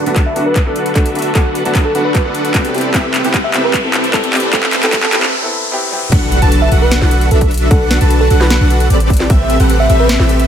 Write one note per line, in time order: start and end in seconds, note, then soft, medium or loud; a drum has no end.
0.00 riser medium
0.06 0.34 B1 medium
0.06 0.17 A3 medium
0.06 0.18 B3 medium
0.06 0.34 D4 medium
0.06 0.18 D4 medium
0.06 0.34 F#4 medium
0.06 0.18 F#4 loud
0.06 0.34 A4 medium
0.06 0.34 B4 medium
0.06 0.34 A5 loud
0.06 closed hi-hat medium
0.16 kick medium
0.16 clap soft
0.16 closed hi-hat medium
0.26 0.44 E5 medium
0.35 0.64 B1 loud
0.35 0.43 A3 medium
0.35 0.43 B3 medium
0.35 0.64 D4 medium
0.35 0.44 D4 medium
0.35 0.64 F#4 medium
0.35 0.44 F#4 medium
0.35 0.64 A4 medium
0.35 0.64 B4 medium
0.35 0.64 F#5 loud
0.35 closed hi-hat medium
0.46 0.61 B4 medium
0.56 kick medium
0.56 clap medium
0.56 closed hi-hat medium
0.65 0.94 B1 medium
0.65 0.93 A3 medium
0.65 0.93 B3 medium
0.65 0.93 D4 medium
0.65 0.94 D4 medium
0.65 0.93 F#4 medium
0.65 0.93 A4 medium
0.65 0.94 A4 medium
0.65 0.93 B4 medium
0.65 0.93 F#5 medium
0.76 closed hi-hat medium
0.86 closed hi-hat medium
0.95 1.13 A3 medium
0.95 1.13 B3 medium
0.95 1.33 D4 medium
0.95 1.13 D4 medium
0.95 1.33 F#4 medium
0.95 1.14 F#4 loud
0.95 1.10 A4 medium
0.95 1.33 A4 medium
0.95 1.33 B4 medium
0.95 1.33 E5 medium
0.95 kick medium
0.95 clap medium
0.95 closed hi-hat medium
1.06 closed hi-hat medium
1.14 1.33 A3 medium
1.14 1.33 B3 medium
1.14 1.33 D4 medium
1.14 1.34 F#4 medium
1.14 closed hi-hat soft
1.19 closed hi-hat medium
1.22 closed hi-hat medium
1.34 1.42 A3 medium
1.34 1.42 B3 medium
1.34 1.63 D4 loud
1.34 1.43 D4 medium
1.34 1.63 F#4 medium
1.34 1.43 F#4 medium
1.34 1.50 A4 medium
1.34 1.63 A4 medium
1.34 1.63 B4 medium
1.34 1.63 F#5 loud
1.34 kick loud
1.34 clap medium
1.34 closed hi-hat medium
1.55 closed hi-hat medium
1.64 1.93 B1 loud
1.64 1.76 A3 medium
1.64 1.76 B3 medium
1.64 1.93 D4 medium
1.64 1.77 D4 medium
1.64 1.93 F#4 medium
1.64 1.77 F#4 loud
1.64 1.93 A4 medium
1.64 1.93 B4 medium
1.64 1.93 A5 loud
1.64 closed hi-hat medium
1.75 kick medium
1.75 clap medium
1.75 closed hi-hat medium
1.85 1.99 A4 medium
1.94 2.23 B1 loud
1.94 2.02 A3 medium
1.94 2.02 B3 medium
1.94 2.23 D4 medium
1.94 2.02 D4 medium
1.94 2.23 F#4 medium
1.94 2.03 F#4 medium
1.94 2.23 A4 medium
1.94 2.23 B4 medium
1.94 2.23 F#5 loud
1.94 closed hi-hat medium
2.05 2.11 B4 medium
2.15 2.21 B4 medium
2.15 kick loud
2.15 clap medium
2.15 closed hi-hat medium
2.24 2.53 B1 loud
2.24 2.52 A3 medium
2.24 2.52 B3 medium
2.24 2.52 D4 medium
2.24 2.52 F#4 medium
2.24 2.52 A4 medium
2.24 2.53 A4 medium
2.24 2.52 B4 medium
2.24 2.52 F#5 medium
2.35 closed hi-hat medium
2.45 closed hi-hat medium
2.54 2.72 A3 medium
2.54 2.72 B3 medium
2.54 2.72 D4 medium
2.54 2.73 F#4 loud
2.54 kick medium
2.54 clap medium
2.54 closed hi-hat medium
2.65 closed hi-hat medium
2.73 2.91 B3 medium
2.73 2.92 C4 medium
2.73 2.92 E4 medium
2.73 2.92 G4 medium
2.73 closed hi-hat soft
2.78 closed hi-hat medium
2.81 closed hi-hat medium
2.93 3.22 A1 loud
2.93 3.01 B3 medium
2.93 3.01 C4 medium
2.93 3.22 C4 loud
2.93 3.02 E4 medium
2.93 3.22 G4 medium
2.93 3.02 G4 medium
2.93 3.22 A4 medium
2.93 kick loud
2.93 clap medium
2.93 closed hi-hat medium
3.14 clap medium
3.14 closed hi-hat medium
3.23 3.52 A1 loud
3.23 3.35 B3 medium
3.23 3.35 C4 medium
3.23 3.52 C4 medium
3.23 3.36 E4 medium
3.23 3.52 G4 medium
3.23 3.36 G4 loud
3.23 3.52 A4 medium
3.23 3.52 B4 medium
3.23 3.52 F#5 loud
3.23 closed hi-hat medium
3.34 kick medium
3.34 clap medium
3.34 closed hi-hat medium
3.44 3.62 E5 medium
3.53 3.82 A1 loud
3.53 3.61 B3 medium
3.53 3.61 C4 medium
3.53 3.81 C4 medium
3.53 3.61 E4 medium
3.53 3.81 G4 medium
3.53 3.62 G4 medium
3.53 3.81 A4 medium
3.53 3.81 B4 medium
3.53 3.81 E5 loud
3.53 clap medium
3.53 closed hi-hat medium
3.64 3.78 B4 medium
3.74 kick medium
3.74 clap medium
3.74 closed hi-hat medium
3.83 4.12 A1 loud
3.83 4.11 B3 medium
3.83 4.11 C4 medium
3.83 4.11 E4 medium
3.83 4.11 G4 medium
3.83 4.11 A4 medium
3.83 4.12 A4 medium
3.83 4.11 B4 medium
3.83 4.11 E5 medium
3.94 clap medium
3.94 closed hi-hat medium
4.04 closed hi-hat medium
4.13 4.31 B3 medium
4.13 4.31 C4 medium
4.13 4.51 C4 medium
4.13 4.31 E4 medium
4.13 4.51 G4 medium
4.13 4.32 G4 loud
4.13 4.51 A4 medium
4.13 4.28 A4 loud
4.13 4.51 D5 medium
4.13 kick loud
4.13 clap medium
4.13 closed hi-hat medium
4.24 closed hi-hat medium
4.33 4.50 B3 medium
4.33 4.51 C4 medium
4.33 4.51 E4 medium
4.33 4.52 G4 medium
4.33 clap medium
4.33 closed hi-hat soft
4.37 closed hi-hat medium
4.40 closed hi-hat medium
4.52 4.60 B3 medium
4.52 4.60 C4 medium
4.52 4.81 C4 loud
4.52 4.61 E4 medium
4.52 4.81 G4 medium
4.52 4.61 G4 medium
4.52 4.68 A4 medium
4.52 4.81 A4 medium
4.52 4.81 E5 loud
4.52 kick loud
4.52 clap medium
4.52 closed hi-hat medium
4.63 clap medium
4.73 clap loud
4.73 closed hi-hat medium
4.82 5.11 A1 loud
4.82 4.94 B3 medium
4.82 4.94 C4 medium
4.82 5.11 C4 medium
4.82 4.95 E4 medium
4.82 5.10 G4 medium
4.82 4.95 G4 loud
4.82 5.10 A4 medium
4.82 4.98 A4 loud
4.82 5.10 B4 medium
4.82 5.11 F#5 loud
4.82 clap medium
4.82 closed hi-hat medium
4.93 kick loud
4.93 clap loud
4.93 closed hi-hat medium
5.03 5.09 A4 medium
5.03 clap medium
5.12 5.33 A1 loud
5.12 5.20 B3 medium
5.12 5.20 C4 medium
5.12 5.33 C4 medium
5.12 5.20 E4 medium
5.12 5.33 G4 medium
5.12 5.21 G4 medium
5.12 5.33 A4 medium
5.12 5.33 B4 medium
5.12 5.33 E5 loud
5.12 clap medium
5.12 closed hi-hat medium
5.23 clap medium
5.42 5.70 B3 medium
5.42 5.70 C4 medium
5.42 5.70 E4 medium
5.42 5.71 A4 loud
5.71 5.89 B3 medium
5.71 5.90 C4 medium
5.71 5.90 E4 medium
5.71 5.90 G4 loud
5.91 6.09 B3 medium
5.91 6.10 C4 medium
5.91 6.10 E4 medium
5.91 6.10 G4 medium
5.91 high tom medium
6.02 mid tom medium
6.12 6.40 B1 medium
6.12 6.40 D4 loud
6.12 6.40 F#4 medium
6.12 6.40 A4 medium
6.12 6.40 B4 medium
6.12 6.40 F#5 loud
6.12 kick loud
6.12 closed hi-hat medium
6.12 crash loud
6.12 impact medium
6.32 closed hi-hat medium
6.42 6.70 B1 loud
6.42 6.69 D4 loud
6.42 6.69 F#4 medium
6.42 6.69 A4 medium
6.42 6.69 B4 medium
6.42 6.69 A5 loud
6.42 closed hi-hat medium
6.52 closed hi-hat medium
6.62 6.80 E5 medium
6.72 7.00 B1 loud
6.72 6.99 D4 medium
6.72 6.99 F#4 medium
6.72 6.99 A4 medium
6.72 6.99 B4 medium
6.72 6.99 F#5 loud
6.72 closed hi-hat medium
6.82 6.96 B4 medium
6.92 snare loud
6.92 closed hi-hat medium
7.01 7.29 B1 medium
7.01 7.29 D4 medium
7.01 7.29 F#4 medium
7.01 7.29 A4 medium
7.01 7.29 B4 medium
7.01 7.29 F#5 medium
7.01 snare medium
7.11 closed hi-hat medium
7.21 closed hi-hat medium
7.31 7.69 B1 loud
7.31 7.69 D4 medium
7.31 7.69 F#4 medium
7.31 7.69 A4 medium
7.31 7.46 A4 medium
7.31 7.69 B4 medium
7.31 7.69 E5 medium
7.31 closed hi-hat medium
7.41 kick medium
7.41 closed hi-hat medium
7.51 closed hi-hat medium
7.51 open hi-hat medium
7.58 closed hi-hat medium
7.71 7.99 B1 medium
7.71 7.99 D4 loud
7.71 7.99 F#4 medium
7.71 7.86 A4 medium
7.71 7.99 A4 medium
7.71 7.99 B4 medium
7.71 7.99 F#5 loud
7.71 kick loud
7.71 closed hi-hat medium
7.91 snare medium
7.91 closed hi-hat medium
8.01 8.29 B1 loud
8.01 8.28 D4 medium
8.01 8.28 F#4 medium
8.01 8.28 A4 medium
8.01 8.28 B4 medium
8.01 8.28 A5 loud
8.01 closed hi-hat medium
8.11 closed hi-hat medium
8.21 8.35 A4 medium
8.30 8.59 B1 loud
8.30 8.58 D4 medium
8.30 8.58 F#4 medium
8.30 8.58 A4 medium
8.30 8.58 B4 medium
8.30 8.58 F#5 loud
8.30 closed hi-hat medium
8.41 8.47 B4 medium
8.41 snare medium
8.50 8.57 B4 medium
8.50 snare loud
8.50 closed hi-hat medium
8.61 8.88 B1 medium
8.61 8.88 D4 medium
8.61 8.88 F#4 medium
8.61 8.88 A4 medium
8.61 8.88 B4 medium
8.61 8.88 F#5 medium
8.70 closed hi-hat medium
8.80 closed hi-hat medium
8.90 9.28 A1 loud
8.90 9.28 C4 medium
8.90 9.28 G4 medium
8.90 9.28 A4 medium
8.90 9.28 B4 medium
8.90 9.28 D5 medium
8.90 closed hi-hat medium
9.00 closed hi-hat medium
9.10 kick medium
9.10 closed hi-hat medium
9.10 open hi-hat medium
9.17 snare medium
9.17 closed hi-hat medium
9.30 9.58 A1 loud
9.30 9.58 C4 loud
9.30 9.58 G4 loud
9.30 9.58 A4 medium
9.30 9.58 B4 medium
9.30 9.58 E5 loud
9.30 kick loud
9.30 closed hi-hat medium
9.50 closed hi-hat medium
9.60 9.88 A1 loud
9.60 9.87 C4 medium
9.60 9.87 G4 medium
9.60 9.87 A4 medium
9.60 9.87 B4 medium
9.60 9.87 F#5 loud
9.60 closed hi-hat medium
9.70 closed hi-hat medium
9.80 9.98 E5 medium
9.90 10.18 A1 loud
9.90 10.17 C4 medium
9.90 10.17 G4 medium
9.90 10.17 A4 medium
9.90 10.17 B4 medium
9.90 10.17 E5 loud
9.90 closed hi-hat medium
10.00 10.14 B4 medium
10.09 snare loud
10.09 closed hi-hat medium
10.20 10.47 A1 loud
10.20 10.47 C4 medium
10.20 10.47 G4 medium
10.20 10.47 A4 medium
10.20 10.47 B4 medium
10.20 10.47 E5 medium
10.20 snare medium
10.29 closed hi-hat medium
10.40 closed hi-hat medium